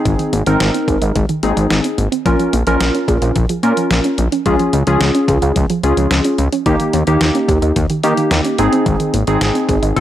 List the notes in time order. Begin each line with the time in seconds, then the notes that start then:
Already playing: C4 D#4 G#4
0.05 G#1 D#3, kick, closed hi-hat
0.19 D#3, closed hi-hat
0.33 G#1 A#3, closed hi-hat
0.46 G#1 D#3 C4 D#4 A#4, closed hi-hat
0.60 G#1 D#3, snare, closed hi-hat
0.74 C4, closed hi-hat
0.88 G#1 G#4, kick, closed hi-hat
1.02 G#1 D#5, closed hi-hat
1.15 G#1 D#3, kick, closed hi-hat
1.29 D#3, closed hi-hat
1.43 G#1 A#3 C4 D#4 G#4, closed hi-hat
1.57 G#1 D#3, closed hi-hat
1.71 G#1 D#3, snare, closed hi-hat
1.84 C4, closed hi-hat
1.98 G#1 A#3, closed hi-hat
2.12 C4, closed hi-hat
2.26 A#1 F3 C#4 F4 A#4, kick, closed hi-hat
2.39 F3, closed hi-hat
2.53 A#1 A#3, closed hi-hat
2.67 A#1 F3 C#4 F4 A#4, closed hi-hat
2.80 A#1 F3, snare, closed hi-hat
2.95 C#4, closed hi-hat
3.08 A#1 G#4, kick, closed hi-hat
3.22 A#1 F5, closed hi-hat
3.36 A#1 F3, kick, closed hi-hat
3.49 F3, closed hi-hat
3.63 A#2 A#3 C#4 F4 A#4, closed hi-hat
3.77 F3, closed hi-hat
3.91 A#1 F3, snare, closed hi-hat
4.04 C#4, closed hi-hat
4.18 A#1 A#3, closed hi-hat
4.32 C#4, closed hi-hat
4.46 C#2 F3 C#4 F4 G#4, kick, closed hi-hat
4.59 F3, closed hi-hat
4.73 C#2 G#3, closed hi-hat
4.87 C#2 F3 C#4 F4 G#4, closed hi-hat
5.01 C#2 F3, snare, closed hi-hat
5.15 C#4, closed hi-hat
5.28 C#2 G#4, kick, closed hi-hat
5.42 C#2 F5, closed hi-hat
5.56 C#2 F3, kick, closed hi-hat
5.70 F3, closed hi-hat
5.83 C#2 G#3 C#4 F4 G#4, closed hi-hat
5.97 C#2 F3, closed hi-hat
6.11 C#2 F3, snare, closed hi-hat
6.24 C#4, closed hi-hat
6.38 C#2 G#3, closed hi-hat
6.52 C#4, closed hi-hat
6.66 D#2 D#3 A#3 D#4 G4, kick, closed hi-hat
6.80 D#3, closed hi-hat
6.93 D#2 A#3, closed hi-hat
7.07 D#2 D#3 A#3 D#4 G4, closed hi-hat
7.21 D#2 D#3, snare, closed hi-hat
7.35 C#4, closed hi-hat
7.48 D#2 G4, kick, closed hi-hat
7.62 D#2 D#5, closed hi-hat
7.76 D#2 D#3, kick, closed hi-hat
7.90 D#3, closed hi-hat
8.04 D#3 A#3 D#4 G4, closed hi-hat
8.17 D#3, closed hi-hat
8.31 D#2 D#3, snare, closed hi-hat
8.45 C#4, closed hi-hat
8.58 G#1 A#3 C4 D#4 G#4, closed hi-hat
8.73 C4, closed hi-hat
8.86 G#1 D#3, kick, closed hi-hat
9.00 D#3, closed hi-hat
9.14 G#1 A#3, closed hi-hat
9.27 G#1 D#3 C4 D#4 G#4, closed hi-hat
9.41 G#1 D#3, snare, closed hi-hat
9.55 C4, closed hi-hat
9.69 G#1 G#4, kick, closed hi-hat
9.83 G#1 D#5, closed hi-hat
9.96 F1 F3 C4 F4 A4, kick, closed hi-hat